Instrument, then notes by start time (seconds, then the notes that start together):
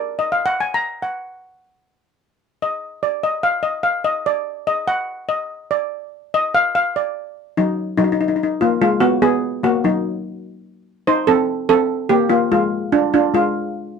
steel pan
Already playing: D5
0.19 D#5
0.32 F5
0.46 F#5
0.60 G#5
0.74 A#5
1.02 F#5
2.62 D#5
3.03 D5
3.23 D#5
3.43 F5
3.63 D#5
3.83 F5
4.04 D#5
4.26 D5
4.67 D#5
4.88 F#5
5.29 D#5
5.71 D5
6.34 D#5
6.55 F5
6.75 F5
6.96 D5
7.57 F#3 D#4
7.97 F#3 D#4
8.04 D#4
8.12 D#4
8.21 D#4
8.28 D#4
8.36 D#4
8.43 D#4
8.61 A#3 F4
8.82 G#3 F4
9.00 B3 F#4
9.22 B3 G#4
9.63 A#3 F#4
9.84 F#3 D#4
11.07 D#4 C5
11.27 C4 A4
11.69 C4 A4
12.09 A#3 G4
12.30 A#3 F4
12.51 G#3 F4
12.92 D4 F4
13.14 D4 F4
13.34 G#3 F4